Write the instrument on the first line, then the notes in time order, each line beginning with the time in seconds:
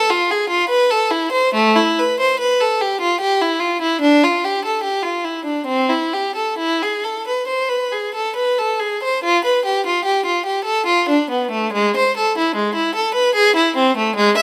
violin
0.10 F4
0.31 G#4
0.49 F4
0.69 B4
0.90 A4
1.11 E4
1.32 C5
1.54 A3
1.76 E4
1.99 B4
2.20 C5
2.39 B4
2.60 A4
2.81 G4
3.01 F4
3.20 G4
3.41 E4
3.60 F4
3.81 E4
4.01 D4
4.24 F4
4.44 G4
4.65 A4
4.83 G4
5.03 F4
5.25 E4
5.45 D4
5.67 C4
5.89 E4
6.13 G4
6.35 A4
6.58 E4
6.82 G#4
7.04 A4
7.27 B4
7.47 C5
7.69 B4
7.92 G#4
8.14 A4
8.36 B4
8.58 A4
8.80 G#4
9.03 C5
9.24 F4
9.45 B4
9.65 G4
9.86 F4
10.05 G4
10.25 F4
10.46 G4
10.64 A4
10.86 F4
11.09 D4
11.30 B3
11.51 A3
11.73 G#3
11.97 C5
12.17 A4
12.38 E4
12.55 G#3
12.75 E4
12.95 A4
13.14 B4
13.35 G#4
13.56 E4
13.76 C4
13.97 A3
14.16 G#3
14.37 E5